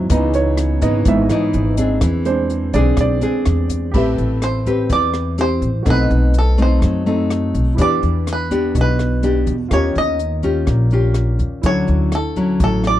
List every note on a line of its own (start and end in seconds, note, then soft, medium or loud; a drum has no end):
0.00 0.12 F#3 soft
0.00 0.11 C4 soft
0.00 0.11 E4 soft
0.00 0.11 E5 medium
0.10 0.78 C#2 loud
0.10 1.04 C#3 medium
0.10 0.78 E3 medium
0.10 0.79 E3 soft
0.10 0.78 B3 medium
0.10 0.79 B3 soft
0.10 0.79 D#4 medium
0.10 0.79 D#4 soft
0.10 kick medium
0.10 closed hi-hat medium
0.34 0.79 C#5 medium
0.34 closed hi-hat soft
0.57 cross-stick medium
0.57 closed hi-hat soft
0.81 1.04 G#1 medium
0.81 1.26 E3 medium
0.81 1.26 B3 medium
0.81 1.27 D#4 medium
0.81 1.06 D#5 medium
0.81 kick soft
0.81 closed hi-hat soft
1.05 1.28 G#1 medium
1.05 2.00 G#2 medium
1.05 1.28 E3 soft
1.05 1.28 B3 soft
1.05 1.28 D#4 soft
1.05 1.30 E5 medium
1.05 kick medium
1.05 closed hi-hat medium
1.29 1.74 E3 medium
1.29 1.74 B3 medium
1.29 1.75 D#4 medium
1.29 cross-stick medium
1.29 closed hi-hat soft
1.53 1.99 G#1 medium
1.53 closed hi-hat soft
1.77 2.70 C4 medium
1.77 2.70 D4 medium
1.77 2.71 G#4 medium
1.77 kick soft
1.77 closed hi-hat medium
2.01 2.70 E2 medium
2.01 2.96 E3 medium
2.01 kick medium
2.01 cross-stick medium
2.01 closed hi-hat medium
2.25 2.58 G#3 soft
2.25 2.58 C4 soft
2.25 2.58 D4 soft
2.25 2.71 C5 medium
2.25 closed hi-hat soft
2.50 closed hi-hat soft
2.73 2.96 B1 medium
2.73 3.19 C4 medium
2.73 3.19 D4 medium
2.73 3.19 G#4 medium
2.73 2.97 D5 medium
2.73 kick soft
2.73 closed hi-hat soft
2.97 3.20 B1 medium
2.97 3.14 D5 medium
2.97 kick medium
2.97 cross-stick medium
2.97 closed hi-hat medium
3.21 3.90 C4 medium
3.21 3.90 D4 medium
3.21 3.91 G#4 medium
3.21 closed hi-hat soft
3.45 3.91 E2 medium
3.45 cross-stick medium
3.45 closed hi-hat soft
3.70 kick soft
3.70 closed hi-hat soft
3.91 4.16 A1 medium
3.91 4.88 A3 soft
3.91 4.63 C4 medium
3.91 5.81 G4 medium
3.91 4.63 G4 medium
3.91 5.82 B5 soft
3.91 kick medium
3.91 crash medium
3.96 4.63 B4 medium
3.96 5.84 E5 medium
4.18 4.86 A1 medium
4.18 closed hi-hat soft
4.42 4.92 C5 medium
4.42 cross-stick medium
4.42 closed hi-hat soft
4.66 5.35 C4 medium
4.66 5.35 G4 medium
4.66 5.35 B4 medium
4.66 kick soft
4.66 closed hi-hat soft
4.90 5.58 E2 medium
4.90 5.84 E3 medium
4.90 5.40 D5 loud
4.90 kick medium
4.90 closed hi-hat soft
5.14 cross-stick medium
5.14 closed hi-hat soft
5.38 5.69 C4 medium
5.38 5.69 G4 medium
5.38 5.89 C5 loud
5.38 closed hi-hat soft
5.62 5.84 A1 medium
5.62 kick soft
5.62 closed hi-hat soft
5.83 6.09 B1 medium
5.83 6.80 B2 medium
5.83 6.34 A3 medium
5.83 6.34 C4 medium
5.83 6.34 D#4 medium
5.83 7.73 F#4 soft
5.83 7.74 A4 soft
5.83 kick medium
5.83 cross-stick medium
5.83 closed hi-hat soft
5.87 7.75 C4 soft
5.87 6.38 B4 medium
5.87 7.76 D#5 medium
6.11 6.79 B1 medium
6.11 closed hi-hat soft
6.34 closed hi-hat soft
6.39 6.61 A4 medium
6.58 7.03 A3 medium
6.58 7.03 C4 medium
6.58 7.03 D#4 medium
6.58 kick soft
6.58 closed hi-hat soft
6.62 7.29 C5 medium
6.82 7.51 F#2 medium
6.82 7.76 F#3 medium
6.82 kick medium
6.82 cross-stick medium
6.82 closed hi-hat soft
7.06 7.75 A3 medium
7.06 7.75 C4 medium
7.06 7.75 D#4 medium
7.06 closed hi-hat soft
7.30 cross-stick medium
7.30 closed hi-hat soft
7.54 7.77 B1 medium
7.54 kick soft
7.54 closed hi-hat soft
7.75 8.01 E2 medium
7.75 8.73 E3 medium
7.75 8.47 B3 medium
7.75 8.47 D4 medium
7.75 9.65 E4 soft
7.75 9.66 G4 soft
7.75 9.67 B4 soft
7.75 kick medium
7.75 closed hi-hat soft
7.79 8.47 G4 medium
7.79 9.68 D5 medium
7.79 8.25 D5 loud
8.03 8.71 E2 medium
8.03 closed hi-hat soft
8.27 cross-stick medium
8.27 closed hi-hat soft
8.33 8.75 B4 medium
8.51 9.19 B3 medium
8.51 9.19 D4 medium
8.51 9.20 G4 medium
8.51 kick soft
8.51 closed hi-hat soft
8.75 9.43 B1 medium
8.75 9.69 B2 medium
8.75 kick medium
8.75 closed hi-hat soft
8.81 9.46 B4 medium
8.99 cross-stick medium
8.99 closed hi-hat soft
9.23 9.54 B3 medium
9.23 9.54 D4 medium
9.23 9.54 G4 medium
9.23 closed hi-hat soft
9.47 9.70 E2 medium
9.47 kick soft
9.47 closed hi-hat soft
9.69 9.94 D#2 medium
9.69 10.65 D#3 soft
9.69 10.19 C#4 soft
9.69 11.59 F4 medium
9.69 10.19 F4 medium
9.69 11.59 G4 soft
9.69 10.20 G4 medium
9.69 11.61 A#4 soft
9.69 kick medium
9.69 cross-stick medium
9.69 closed hi-hat soft
9.73 9.97 C#5 medium
9.73 11.61 C#5 medium
9.95 10.64 D#2 medium
9.95 10.89 D#5 loud
9.95 closed hi-hat soft
10.19 closed hi-hat soft
10.43 10.88 C#4 medium
10.43 10.88 F4 medium
10.43 10.88 G4 medium
10.43 kick soft
10.43 closed hi-hat soft
10.67 11.36 A#1 medium
10.67 11.62 A#2 soft
10.67 kick medium
10.67 cross-stick medium
10.67 closed hi-hat soft
10.91 11.60 C#4 medium
10.91 11.60 F4 medium
10.91 11.61 G4 medium
10.91 closed hi-hat soft
11.14 cross-stick soft
11.14 closed hi-hat soft
11.39 11.62 D#2 medium
11.39 kick soft
11.39 closed hi-hat soft
11.62 11.86 D2 medium
11.62 12.58 D3 soft
11.62 12.12 F#3 medium
11.62 12.12 C#4 medium
11.62 13.00 E4 soft
11.62 13.00 F#4 soft
11.62 13.00 A4 soft
11.62 kick medium
11.62 closed hi-hat soft
11.66 12.13 E4 medium
11.66 12.15 C#5 medium
11.66 13.00 C#6 medium
11.88 12.56 D2 medium
11.88 closed hi-hat soft
12.12 12.63 A4 medium
12.12 cross-stick medium
12.12 closed hi-hat soft
12.36 13.00 F#3 medium
12.36 13.00 C#4 medium
12.36 13.00 E4 medium
12.36 kick soft
12.36 closed hi-hat soft
12.60 13.00 A1 medium
12.60 13.00 A2 soft
12.60 12.84 A4 medium
12.60 kick medium
12.60 closed hi-hat soft
12.84 13.00 D5 loud
12.84 cross-stick medium
12.84 closed hi-hat soft